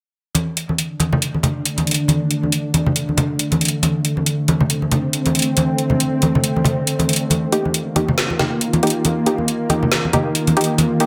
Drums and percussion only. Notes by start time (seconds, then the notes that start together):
0.35 closed hi-hat, high conga
0.57 closed hi-hat
0.69 high conga
0.78 closed hi-hat
1.00 closed hi-hat, high conga
1.13 low conga
1.22 closed hi-hat
1.34 high conga
1.43 closed hi-hat, low conga
1.65 closed hi-hat
1.78 closed hi-hat, high conga
1.87 closed hi-hat
1.91 closed hi-hat
1.94 closed hi-hat
2.08 closed hi-hat, high conga
2.31 closed hi-hat
2.43 high conga
2.52 closed hi-hat
2.74 closed hi-hat, high conga
2.86 low conga
2.96 closed hi-hat
3.09 high conga
3.17 closed hi-hat, low conga
3.39 closed hi-hat
3.52 closed hi-hat, high conga
3.61 closed hi-hat
3.65 closed hi-hat
3.68 closed hi-hat
3.83 closed hi-hat, high conga
4.05 closed hi-hat
4.17 high conga
4.26 closed hi-hat
4.48 closed hi-hat, high conga
4.61 low conga
4.70 closed hi-hat
4.82 high conga
4.91 closed hi-hat, low conga
5.13 closed hi-hat
5.26 closed hi-hat, high conga
5.35 closed hi-hat
5.39 closed hi-hat
5.42 closed hi-hat
5.57 closed hi-hat, high conga
5.78 closed hi-hat
5.90 high conga, low conga
6.00 closed hi-hat
6.22 closed hi-hat, high conga
6.35 low conga
6.44 closed hi-hat
6.56 high conga
6.65 closed hi-hat, low conga
6.87 closed hi-hat
6.99 closed hi-hat, high conga
7.09 closed hi-hat
7.13 closed hi-hat
7.16 closed hi-hat
7.30 closed hi-hat, high conga
7.52 closed hi-hat
7.65 high conga
7.74 closed hi-hat
7.96 closed hi-hat, high conga
8.08 low conga
8.18 snare, closed hi-hat
8.30 high conga
8.39 snare, closed hi-hat, low conga
8.61 closed hi-hat
8.73 closed hi-hat, high conga
8.83 closed hi-hat
8.87 closed hi-hat
8.90 closed hi-hat
9.05 closed hi-hat, high conga
9.26 closed hi-hat
9.38 high conga
9.48 closed hi-hat
9.70 closed hi-hat, high conga
9.83 low conga
9.92 snare, closed hi-hat
10.05 high conga
10.13 closed hi-hat, low conga
10.35 closed hi-hat
10.47 closed hi-hat, high conga
10.57 closed hi-hat
10.61 closed hi-hat
10.64 closed hi-hat
10.78 closed hi-hat, high conga
11.00 closed hi-hat